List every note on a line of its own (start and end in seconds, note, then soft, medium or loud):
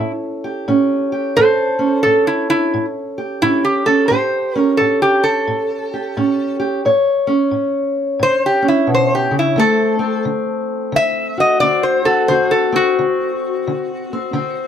0.00 0.61 A2 medium
0.00 0.68 C#4 medium
0.00 0.11 E4 medium
0.00 1.38 A4 medium
0.44 1.12 G4 medium
0.68 1.30 A2 medium
0.68 1.79 C#4 medium
1.12 1.41 G4 medium
1.37 1.99 A2 medium
1.37 6.84 A4 medium
1.37 2.02 C5 medium
1.79 3.42 C#4 medium
2.03 2.67 A2 medium
2.03 2.25 A4 medium
2.27 2.48 E4 medium
2.50 2.85 E4 medium
2.74 3.36 A2 medium
3.18 4.11 G4 medium
3.42 4.04 A2 medium
3.42 3.86 C#4 medium
3.42 3.63 E4 loud
3.65 3.86 G4 medium
3.86 4.14 C#4 medium
3.86 4.08 A4 medium
4.08 4.73 A2 medium
4.08 5.89 G4 medium
4.08 4.58 C5 medium
4.55 6.16 C#4 medium
4.55 4.74 A#4 medium
4.77 5.42 A2 medium
4.77 4.99 A4 medium
5.02 5.23 G4 medium
5.24 6.56 A4 medium
5.47 6.09 A2 medium
5.94 6.58 G4 medium
6.17 6.78 A2 medium
6.17 6.81 C#4 medium
6.60 6.80 G4 medium
6.85 7.47 A2 medium
6.85 9.54 C#5 medium
7.27 8.61 C#4 medium
7.51 8.14 A2 medium
8.19 8.82 A2 medium
8.19 8.43 C5 medium
8.46 8.66 G4 medium
8.62 9.53 C#4 soft
8.68 8.89 E4 medium
8.87 9.30 B2 medium
8.94 9.13 C5 medium
9.15 9.35 G4 medium
9.31 9.56 C#3 medium
9.39 9.58 E4 medium
9.56 10.19 D3 medium
9.56 13.08 A3 medium
9.56 9.99 C4 medium
9.56 10.24 A4 medium
9.99 11.61 C4 medium
10.25 10.88 D3 medium
10.92 11.55 D3 medium
10.92 11.38 E5 loud
11.38 12.04 F#4 medium
11.38 11.60 D#5 medium
11.60 12.24 D3 medium
11.60 12.71 C4 medium
11.60 11.82 D5 medium
11.83 12.05 C5 medium
12.05 12.27 F#4 medium
12.05 12.28 A4 medium
12.28 12.92 D3 medium
12.28 14.67 F#4 medium
12.28 12.51 C5 medium
12.51 12.73 A4 medium
12.72 14.08 C4 medium
12.72 14.67 F#4 medium
12.99 13.61 D3 medium
13.67 14.30 D3 medium
14.13 14.33 C4 medium
14.33 14.67 D3 medium
14.33 14.67 C4 medium